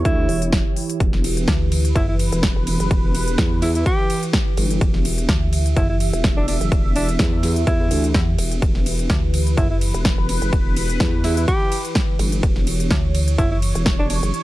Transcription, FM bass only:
1.48 1.94 D2 loud
1.96 2.30 F#1 loud
5.29 5.75 D2 medium
5.76 6.11 F#1 loud
8.15 8.37 E2 loud
9.10 9.56 D2 loud
9.57 9.92 F#1 loud
12.91 13.37 D2 loud
13.38 13.73 F#1 loud

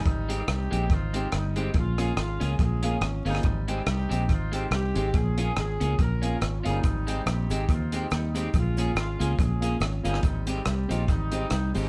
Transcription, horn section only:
0.00 0.69 G3 medium
0.00 0.49 C4 medium
0.00 0.49 D#4 medium
0.50 0.90 C4 medium
0.50 1.30 D#4 medium
0.50 0.92 G4 loud
0.91 1.33 C4 medium
0.91 1.34 F4 medium
1.34 1.73 G3 medium
1.34 1.73 C4 medium
1.34 1.76 D#4 medium
1.77 2.18 G#3 medium
1.77 2.19 C#4 medium
1.77 2.16 F4 medium
2.20 2.99 G#3 medium
2.20 2.61 C#4 medium
2.20 2.59 F4 medium
2.61 3.02 C#4 medium
2.61 3.41 F4 medium
2.61 3.04 G#4 medium
3.03 3.27 C#4 medium
3.27 4.07 G3 medium
3.27 3.71 C4 medium
3.27 3.61 D#4 medium
3.88 4.30 C4 medium
3.88 4.68 D#4 medium
3.88 4.28 G4 medium
4.31 4.73 C4 medium
4.31 4.73 F4 medium
4.74 5.12 C4 medium
4.74 5.12 D#4 medium
4.74 5.16 G4 medium
5.14 5.57 C#4 medium
5.14 5.57 F4 medium
5.14 5.58 G#4 medium
5.58 6.00 C#4 medium
5.58 6.00 F4 medium
5.58 5.98 G#4 medium
6.01 6.43 C#4 medium
6.01 6.59 F4 medium
6.01 6.43 A#4 medium
6.44 6.59 C#4 medium
6.60 6.67 F4 medium
6.69 7.48 G3 medium
6.69 7.28 C4 medium
6.69 7.28 D#4 medium
7.30 7.69 C4 medium
7.30 8.09 D#4 medium
7.30 7.71 G4 loud
7.71 8.12 C4 medium
7.71 8.10 F4 medium
8.13 8.52 G3 medium
8.13 8.52 C4 medium
8.13 8.55 D#4 medium
8.58 8.96 G#3 medium
8.58 8.96 C#4 medium
8.58 8.97 F4 medium
8.97 9.78 G#3 medium
8.97 9.39 C#4 medium
8.97 9.37 F4 medium
9.40 9.82 C#4 medium
9.40 10.20 F4 medium
9.40 9.82 G#4 medium
9.83 10.06 C#4 medium
10.06 10.87 G3 medium
10.06 10.87 C4 medium
10.06 10.42 D#4 medium
10.68 10.89 G4 medium
10.91 11.09 F4 medium
11.10 11.89 G3 medium
11.10 11.89 C4 medium
11.10 11.72 D#4 medium
11.79 11.89 F3 medium
11.79 11.89 G#3 medium
11.79 11.89 C#4 medium

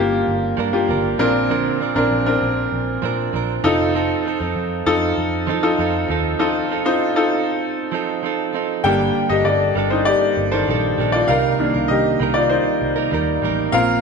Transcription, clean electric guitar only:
0.00 0.57 F3 soft
0.00 0.58 A#3 soft
0.00 0.59 D4 soft
0.00 0.60 A#4 medium
0.57 0.86 F3 medium
0.57 0.88 A#3 medium
0.57 0.89 D4 medium
0.57 0.90 A#4 medium
0.87 1.17 F3 medium
0.87 1.19 A#3 medium
0.87 1.19 D4 medium
0.87 1.20 A#4 medium
1.18 1.49 F3 medium
1.18 1.49 C4 medium
1.18 1.50 D4 medium
1.18 1.50 A#4 medium
1.49 1.80 A#2 medium
1.49 1.80 D3 medium
1.49 1.78 F3 medium
1.49 1.79 C4 medium
1.49 1.81 D4 medium
1.49 1.81 A#4 medium
1.79 1.95 F3 medium
1.79 1.96 C4 medium
1.79 1.95 D4 medium
1.79 1.94 A#4 medium
1.95 3.02 F3 soft
1.95 3.03 C4 soft
1.95 3.03 D4 soft
1.95 3.02 A#4 medium
3.02 3.32 F3 medium
3.02 3.33 C4 medium
3.02 3.34 D4 medium
3.02 3.35 A#4 medium
3.33 3.62 F3 medium
3.33 3.64 C4 medium
3.33 3.65 D4 medium
3.33 3.65 A#4 medium
3.64 3.93 F3 medium
3.64 3.94 C4 medium
3.64 3.95 D#4 medium
3.64 3.95 A4 medium
3.94 4.24 F3 medium
3.94 4.25 C4 medium
3.94 4.26 D#4 medium
3.94 4.26 A4 medium
4.25 4.40 F3 medium
4.25 4.41 C4 medium
4.25 4.40 D#4 medium
4.25 4.39 A4 medium
4.40 5.47 C4 soft
4.40 5.48 D#4 soft
4.40 5.50 A4 soft
5.47 5.76 F3 medium
5.47 5.78 C4 medium
5.47 5.79 D#4 medium
5.47 5.80 A4 medium
5.78 6.07 F3 medium
5.78 6.08 C4 medium
5.78 6.09 D#4 medium
5.78 6.10 A4 medium
6.08 6.38 F3 medium
6.08 6.39 C4 medium
6.08 6.40 D#4 medium
6.08 6.40 A4 medium
6.39 6.68 F3 medium
6.39 6.70 C4 medium
6.39 6.71 D#4 medium
6.39 6.71 A4 medium
6.70 6.85 F3 medium
6.70 6.86 C4 medium
6.70 6.86 D#4 medium
6.70 6.84 A4 medium
6.85 7.92 C4 medium
6.85 7.93 D#4 medium
6.85 7.95 A4 medium
7.92 8.21 F3 medium
7.92 8.23 C4 medium
7.92 8.24 D#4 medium
7.92 8.24 A4 medium
8.23 8.52 F3 medium
8.23 8.53 C4 medium
8.23 8.54 D#4 medium
8.23 8.55 A4 medium
8.53 8.84 F3 medium
8.53 8.85 C4 medium
8.53 8.85 D#4 medium
8.53 8.85 A4 medium
8.84 9.30 G2 medium
8.84 9.30 D3 medium
8.84 9.30 G3 medium
8.84 9.31 A#3 medium
8.84 9.30 D4 loud
8.84 9.28 A4 loud
9.30 9.74 G3 soft
9.30 9.76 A#3 medium
9.30 9.76 D4 soft
9.30 9.76 A4 medium
9.75 10.55 G3 medium
9.75 10.54 A#3 medium
9.75 10.52 D4 medium
9.75 10.51 A4 medium
10.52 10.66 G3 soft
10.52 10.67 A#3 soft
10.52 10.68 D4 medium
10.52 10.67 A4 medium
10.67 10.97 G3 medium
10.67 10.98 A#3 medium
10.67 10.99 D4 medium
10.67 11.00 A4 medium
10.98 11.28 G3 medium
10.98 11.28 A#3 medium
10.98 11.30 D4 medium
10.98 11.30 A4 medium
11.28 11.74 C3 medium
11.28 11.75 G3 loud
11.28 11.75 A#3 medium
11.28 11.75 D#4 loud
11.28 11.73 A#4 medium
11.74 12.20 A#3 soft
11.74 12.21 D#4 soft
11.74 12.20 A#4 medium
12.20 12.96 G3 medium
12.20 12.99 A#3 medium
12.20 12.96 D#4 medium
12.20 12.95 A#4 medium
12.96 13.11 A#3 soft
12.96 13.12 D#4 medium
12.96 13.12 A#4 medium
13.11 13.41 G3 medium
13.11 13.42 A#3 medium
13.11 13.43 D#4 medium
13.11 13.44 A#4 medium
13.42 13.72 G3 medium
13.42 13.71 A#3 medium
13.42 13.74 D#4 medium
13.42 13.74 A#4 medium
13.73 14.01 A#3 medium
13.73 14.01 C4 medium
13.73 14.01 F4 loud
13.73 14.01 A#4 loud

